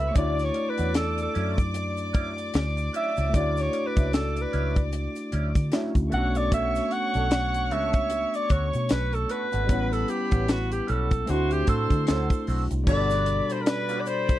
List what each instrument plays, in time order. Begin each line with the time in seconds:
Already playing: tine electric piano B3 C#4 E4 F#4, alto saxophone E5
0.00 violin section B4 B5
0.08 tine electric piano A3, violin section C#5 C#6
0.14 fingered electric bass D2, clean electric guitar F#3 C#4 E4, tine electric piano D4 E4, alto saxophone D5, violin section D5 D6, kick, closed hi-hat, shaker
0.19 tine electric piano F#4
0.39 snare, closed hi-hat, shaker
0.44 alto saxophone C#5
0.54 muted clean electric guitar stroke, closed hi-hat
0.70 alto saxophone B4
0.78 fingered electric bass E2, clean electric guitar F#3 C#4 F#4, closed hi-hat, shaker
0.94 alto saxophone A4, muted clean electric guitar stroke, snare, closed hi-hat, shaker
1.18 muted clean electric guitar stroke, closed hi-hat, shaker
1.22 alto saxophone A4
1.34 fingered electric bass F#2, clean electric guitar F#3 C#4 E4, closed hi-hat
1.57 muted clean electric guitar stroke, kick, closed hi-hat, shaker
1.74 muted clean electric guitar stroke, closed hi-hat, shaker
1.97 closed hi-hat, shaker
2.13 clean electric guitar F#3 C#4 E4, kick, closed hi-hat, shaker
2.38 muted clean electric guitar stroke, closed hi-hat, shaker
2.54 fingered electric bass D2, muted clean electric guitar stroke, snare, closed hi-hat, shaker
2.77 muted clean electric guitar stroke, closed hi-hat, shaker
2.93 clean electric guitar F#3 C#4 E4, alto saxophone E5, closed hi-hat
3.17 fingered electric bass C#2, clean electric guitar F#3 C#4 E4, closed hi-hat, shaker
3.29 clean electric guitar F#3, tine electric piano A3 D4
3.34 fingered electric bass D2, clean electric guitar C#4 E4, tine electric piano E4 F#4, alto saxophone D5, kick, closed hi-hat, shaker
3.57 alto saxophone C#5, snare, closed hi-hat, shaker
3.73 muted clean electric guitar stroke, closed hi-hat
3.87 alto saxophone B4
3.96 fingered electric bass C#2, clean electric guitar F#3 C#4 E4, kick, closed hi-hat, shaker
4.12 alto saxophone A4, muted clean electric guitar stroke, snare, closed hi-hat, shaker
4.35 muted clean electric guitar stroke, closed hi-hat, shaker
4.42 alto saxophone B4
4.52 fingered electric bass C#2, clean electric guitar F#3 C#4 E4, closed hi-hat
4.75 muted clean electric guitar stroke, kick, closed hi-hat, shaker
4.92 muted clean electric guitar stroke, closed hi-hat, shaker
5.16 closed hi-hat, shaker
5.32 fingered electric bass D2, clean electric guitar F#3 C#4 E4, closed hi-hat, shaker
5.55 fingered electric bass D3, muted clean electric guitar stroke, kick, closed hi-hat, shaker
5.72 clean electric guitar F#3 C#4 E4, tine electric piano A3 C#4 D4 E4 F#4, snare, closed hi-hat, shaker
5.95 fingered electric bass D2, muted clean electric guitar stroke, kick, closed hi-hat, shaker
6.09 fingered electric bass B1, tine electric piano A3 B3, clean electric guitar A3 D4 F#4, violin section C#5 C#6, closed hi-hat
6.13 tine electric piano C#4 D4 F#4, alto saxophone F#5
6.35 alto saxophone D5, muted clean electric guitar stroke, closed hi-hat, shaker
6.51 clean electric guitar A3 D4 F#4, alto saxophone E5, kick, closed hi-hat, shaker
6.75 snare, closed hi-hat, shaker
6.91 alto saxophone F#5, muted clean electric guitar stroke, closed hi-hat
7.14 fingered electric bass B1, clean electric guitar A3 D4 A4, closed hi-hat, shaker
7.31 snare, closed hi-hat, shaker
7.54 muted clean electric guitar stroke, closed hi-hat, shaker
7.71 fingered electric bass C#2, clean electric guitar A3 D4 F#4, alto saxophone E5, closed hi-hat
7.93 muted clean electric guitar stroke, kick, closed hi-hat, shaker
8.10 muted clean electric guitar stroke, closed hi-hat, shaker
8.34 alto saxophone D5, closed hi-hat, shaker
8.49 fingered electric bass D2, clean electric guitar A3 D4 F#4, alto saxophone C#5, kick, closed hi-hat, shaker
8.73 fingered electric bass B2, muted clean electric guitar stroke, closed hi-hat, shaker
8.89 fingered electric bass B1, alto saxophone B4, muted clean electric guitar stroke, snare, closed hi-hat, shaker
9.13 alto saxophone A4, muted clean electric guitar stroke, closed hi-hat, shaker
9.29 clean electric guitar A3 D4 F#4, alto saxophone B4, closed hi-hat
9.52 fingered electric bass G#1, clean electric guitar A3 D4 F#4, closed hi-hat, shaker
9.66 fingered electric bass A1, tine electric piano G3 B3 C#4, clean electric guitar G3 C#4 F#4, violin section B4 B5, kick, closed hi-hat, shaker
9.72 tine electric piano E4 F#5
9.93 alto saxophone A4, snare, closed hi-hat, shaker
10.08 alto saxophone G4, muted clean electric guitar stroke, closed hi-hat, shaker
10.31 fingered electric bass A1, clean electric guitar G3 C#4 F#4, kick, closed hi-hat, shaker
10.48 alto saxophone F#4, snare, closed hi-hat, shaker
10.71 alto saxophone G4, muted clean electric guitar stroke, closed hi-hat, shaker
10.87 fingered electric bass B1, clean electric guitar G3 C#4 F#4, alto saxophone A4, closed hi-hat, shaker
11.11 muted clean electric guitar stroke, kick, closed hi-hat, shaker
11.26 fingered electric bass D2, tine electric piano A3 C4 D4, alto saxophone F#4, violin section C5 C6, muted clean electric guitar stroke, closed hi-hat, shaker
11.32 tine electric piano E4 F#4
11.51 alto saxophone G4, closed hi-hat, shaker
11.67 fingered electric bass A2, clean electric guitar A3 C4 F#4, alto saxophone A4, kick, closed hi-hat, shaker
11.90 fingered electric bass D3, muted clean electric guitar stroke, kick, closed hi-hat, shaker
12.07 fingered electric bass D2, clean electric guitar A3 C4 F#4, alto saxophone A4, snare, closed hi-hat, shaker
12.30 muted clean electric guitar stroke, kick, closed hi-hat, shaker
12.47 fingered electric bass B1, clean electric guitar A3 C4 F#4, open hi-hat, shaker
12.71 fingered electric bass C2, muted clean electric guitar stroke, closed hi-hat, shaker
12.84 fingered electric bass G1, tine electric piano B2 G3, clean electric guitar B3, violin section D5 B5, kick, crash
12.88 clean electric guitar D4 F#4, tine electric piano D4 F#4 A4, alto saxophone D5, shaker
13.10 snare, closed hi-hat, shaker
13.26 closed hi-hat, shaker
13.50 alto saxophone C5, muted clean electric guitar stroke, closed hi-hat, shaker
13.62 alto saxophone A#4
13.66 alto saxophone B4, muted clean electric guitar stroke, snare, closed hi-hat, shaker
13.89 clean electric guitar B3 D4 F#4, closed hi-hat, shaker
14.00 alto saxophone D5
14.06 alto saxophone C5, muted clean electric guitar stroke, closed hi-hat, shaker
14.29 muted clean electric guitar stroke, kick, closed hi-hat, shaker